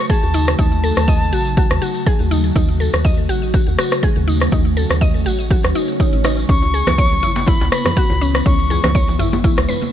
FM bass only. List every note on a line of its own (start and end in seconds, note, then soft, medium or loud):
0.23 0.55 D#2 medium
0.59 0.93 D#2 loud
0.97 1.34 D#2 medium
1.33 1.66 A1 loud
1.71 1.80 D#2 medium
2.20 2.52 D#2 medium
2.56 2.89 D#2 loud
2.94 3.31 D#2 medium
3.29 3.63 A1 medium
3.68 3.76 D#2 medium
4.17 4.49 D#2 medium
4.52 4.86 D#2 loud
4.90 5.28 D#2 medium
5.26 5.60 A1 medium
5.64 5.73 D#2 medium
6.13 6.45 A1 loud
6.49 6.83 C#2 loud
6.87 7.24 C#2 medium
7.23 7.56 G#1 medium
7.61 7.70 C#2 medium
8.10 8.42 C#2 medium
8.46 8.79 C#2 loud
8.84 9.21 C#2 medium
9.20 9.53 G#1 loud
9.58 9.67 C#2 medium